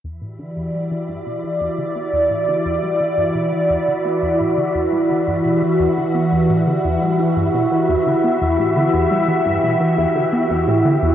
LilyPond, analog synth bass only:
\new Staff \with { instrumentName = "Analog synth bass" } { \clef bass \time 4/4 \key e \minor \tempo 4 = 86 e,16 a,16 d16 e,16 g16 e16 g,16 b,16 e16 e,16 d16 b16 e,16 a,16 d16 e,16 | g16 e16 g,16 b,16 e16 e,16 d16 b16 e,16 a,16 d16 e,16 g16 e16 g,16 b,16 | e16 e,16 d16 b16 e,16 a,16 d16 e,16 g16 e16 g,16 b,16 e16 e,16 d16 b16 | e,16 a,16 d16 e,16 g16 e16 g,16 b,16 e16 e,16 d16 b16 e,16 a,16 d16 e,16 | }